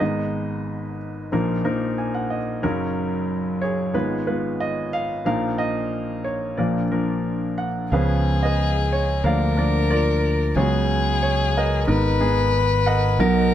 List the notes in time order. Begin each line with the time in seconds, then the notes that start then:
0.00 G#1 G#2 G#3 B3 D#4 B4 D#5
1.32 A#1 A#2 F3 A#3 D#4 A#4
1.64 F3 A#3 D#4 A#4
1.98 G#5
2.14 F#5
2.30 D#5
2.63 F#1 F#2 F#3 C#4 D#4 A#4
3.62 G#4 C#5
3.93 G#1 G#2 G#3 B3 F4 B4
4.27 G#3 B3 F4 B4
4.60 D#5
4.93 F5
5.25 A#1 A#2 F3 A#3 D#4 A#4 F5
5.58 D#5
6.24 C#5
6.57 A#1 A#2 F3 A#3 D4 A#4 D5 F5
6.91 F3 A#3 D4 A#4
7.58 F#5
7.92 C#2 C#3 F3 B3 C#4 G#4 B4 F5
8.43 G#4 B4 D#5
8.92 C#5
9.24 D2 D3 F3 A#3 D4 A#4 D5 F5
9.57 F3 A#3 D4 A#4 D5
9.90 F4 A#4 D5
10.55 C#2 C#3 F#3 B3 C#4 F#4 G#4 C#5
11.23 C#5
11.57 A#4 B4 D#5
11.87 G#1 G#2 G#3 B3 D#4 A#4 B4
12.20 G#3 B3 D#4 G#4
12.86 A#4 D#5 F#5
13.19 B1 B2 F#3 B3 D#4 A#4